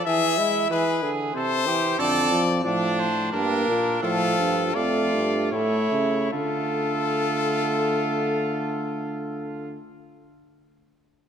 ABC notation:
X:1
M:3/4
L:1/8
Q:1/4=79
K:Dm
V:1 name="Trumpet"
e2 =B z c2 | d2 d c B2 | A2 d2 ^c2 | A6- |
A6 |]
V:2 name="Trumpet"
^G E G G A =G | A z D2 D2 | F2 F2 E2 | F6- |
F6 |]
V:3 name="Euphonium" clef=bass
E, ^G, E, D, C, E, | D, F, F, z B,2 | F,2 A,2 A,2 | A,6- |
A,6 |]
V:4 name="Bass trombone" clef=bass
z6 | F,,2 A,,2 G,, B,, | A,, G,, F,, G,, A,, ^C, | D,6- |
D,6 |]